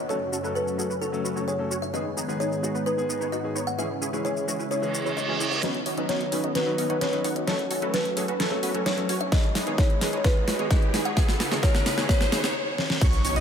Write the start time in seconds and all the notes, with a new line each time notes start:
Already playing: downlifter
0.08 F#2 C#3 F#3 A3 C#4 F#4 A4 C#5, shaker
0.32 C#4 F#4 A4, shaker
0.43 F#3 A3 C#4 F#4 A4 B4, shaker
0.55 C#4 F#4 A4 B4, shaker
0.68 shaker
0.78 F#3 A3 C#4 F#4 G#4 A4, shaker
0.90 C#4 F#4 B4, shaker
1.01 C#4 F#4 A4, shaker
1.12 F#3 A3 C#4 A4, shaker
1.25 C#4 F#4 B4, shaker
1.35 F#3 A3 C#4 F#4 A4 C#5, shaker
1.48 C#4 F#4 G#4 C#5, shaker
1.59 F#3 A3 C#4 A4
1.71 C#4 F#4 C#5, shaker
1.82 E5, shaker
1.93 G#2 D#3 G#3 B3 D#4 G#4 D#5, shaker
2.17 B3 D#4 G#4, shaker
2.28 D#3 G#3 B3 D#4 G#4 B4, shaker
2.40 B3 D#4 G#4 C#5, shaker
2.52 shaker
2.62 D#3 G#3 B3 D#4 F#4 G#4, shaker
2.75 B3 D#4 B4, shaker
2.86 B3 D#4 G#4 B4, shaker
2.97 D#3 G#3 B3 G#4, shaker
3.09 B3 D#4 B4, shaker
3.20 D#3 G#3 B3 D#4 G#4 C#5, shaker
3.32 B3 D#4 F#4 D#5, shaker
3.43 D#3 G#3 B3 G#4
3.55 B3 D#4 C#5, shaker
3.67 F#5, shaker
3.78 C#3 E3 G#3 C#4 E4 G#4 E5, shaker
4.01 C#4 E4 G#4, shaker
4.12 E3 G#3 C#4 E4 G#4 B4, shaker
4.25 C#4 E4 G#4 C#5, shaker
4.37 shaker
4.47 E3 G#3 C#4 E4 F#4 G#4, shaker
4.59 C#4 E4 B4, shaker
4.71 C#4 E4 G#4 C#5, reverse cymbal, shaker
4.82 E3 G#3 C#4 G#4, shaker
4.94 shaker
5.05 E3 G#3 C#4 E4 G#4 C#5, shaker
5.17 D#5, shaker
5.28 E3 G#3 C#4 E4 F#4 G#4
5.40 C#4 E4 G#4, shaker
5.51 E5, shaker
5.62 B1 D#3 F#3 B3 C#4 D#4 F#4 B4 C#5 D#5, snare, closed hi-hat, riser
5.74 closed hi-hat
5.86 B1 B3 C#4 D#4 F#4 C#5, open hi-hat
5.97 F#3 B3 C#4 D#4 F#4 B4 D#5, closed hi-hat
6.09 B1 B3 C#4 D#4 F#4 C#5, snare, closed hi-hat
6.21 closed hi-hat
6.31 B1 F#3 B3 C#4 D#4 F#4 B4, open hi-hat
6.44 B3 C#4 D#4 F#4 D#5, closed hi-hat
6.55 B1 B3 C#4 D#4 F#4 B4 C#5, snare, closed hi-hat
6.66 F#3 C#4 D#4 B4
6.78 B1 B3 C#4 D#4 F#4 D#5, open hi-hat
6.89 F#3 B3 C#4 D#4 F#4 B4 F#5, closed hi-hat
7.01 B1 B3 C#4 D#4 F#4 B4 C#5, snare, closed hi-hat
7.12 B1 F#3 C#4 D#4 B4, closed hi-hat
7.24 B1 B3 C#4 D#4 F#4 F#5, open hi-hat
7.36 D#5, closed hi-hat
7.47 F#1 F#3 A3 C#4 F#4 A4 C#5, snare, closed hi-hat
7.59 closed hi-hat
7.71 F#1 C#4 F#4 A4, open hi-hat
7.82 F#3 A3 C#4 F#4 A4 B4, closed hi-hat
7.94 F#1 C#4 F#4 A4 B4, snare, closed hi-hat
8.05 closed hi-hat
8.16 F#1 F#3 A3 C#4 F#4 G#4 A4, open hi-hat
8.28 C#4 F#4 B4, closed hi-hat
8.40 F#1 C#4 F#4 A4, snare, closed hi-hat
8.51 F#3 A3 C#4 A4
8.63 F#1 C#4 F#4 B4, open hi-hat
8.74 F#3 A3 C#4 F#4 A4 C#5, closed hi-hat
8.86 F#1 C#4 F#4 G#4 C#5, snare, closed hi-hat
8.97 F#1 F#3 A3 C#4 A4, closed hi-hat
9.09 F#1 C#4 F#4 C#5, open hi-hat
9.21 E5, closed hi-hat
9.32 G#1 D#3 G#3 B3 D#4 G#4 B4 D#5, kick, snare, closed hi-hat
9.44 closed hi-hat
9.55 G#1 D#4 G#4 B4, snare, open hi-hat
9.66 D#3 G#3 B3 D#4 G#4 C#5, closed hi-hat
9.78 G#1 C#5, kick, snare, closed hi-hat
9.90 closed hi-hat
10.01 G#1 D#3 G#3 B3 D#4 G#4 B4, snare, open hi-hat
10.13 D#4 G#4 C#5, closed hi-hat
10.17 C#5
10.24 G#1 D#3 G#3 B3 D#4 G#4 B4, kick, snare, closed hi-hat
10.47 G#1 D#4 G#4 B4, snare, open hi-hat
10.58 D#3 G#3 B3 D#4 G#4 C#5, closed hi-hat
10.71 G#1 D#4 G#4 B4 D#5, kick, snare, closed hi-hat
10.82 G#1, closed hi-hat
10.93 G#1 D#3 G#3 B3 D#4 G#4 B4, snare, open hi-hat
11.05 D#4 G#4 C#5 F#5, closed hi-hat
11.16 C#2 C#3 D#3 G#3 B3 D#4 E4 G#4 B4 E5, kick, snare, closed hi-hat
11.28 snare, closed hi-hat
11.40 C#2 D#4 G#4 B4, snare, open hi-hat
11.51 D#3 G#3 B3 D#4 G#4 C#5, snare, closed hi-hat
11.62 C#2 D#3 G#3 B3 D#4 G#4 B4 C#5, kick, snare, closed hi-hat
11.75 snare, closed hi-hat
11.86 C#2 D#4 G#4 B4, snare, open hi-hat
11.97 D#3 G#3 B3 D#4 G#4 C#5, snare, closed hi-hat
12.08 D#3 G#3 B3 G#4 B4 C#5, kick, snare, closed hi-hat
12.21 snare
12.32 C#2 D#3 G#3 B3 D#4 G#4 B4, snare, open hi-hat
12.44 snare, closed hi-hat
12.78 snare
12.90 snare
13.01 B1 D#3 B3 C#4 D#4 F#4 C#5 C#6, kick, closed hi-hat, crash, impact, shaker
13.13 closed hi-hat, shaker
13.24 B1 B3 C#4 D#4 F#4 C#5 C#6, open hi-hat, shaker
13.36 B3 C#4 D#4 F#4 D#5 D#6, closed hi-hat, shaker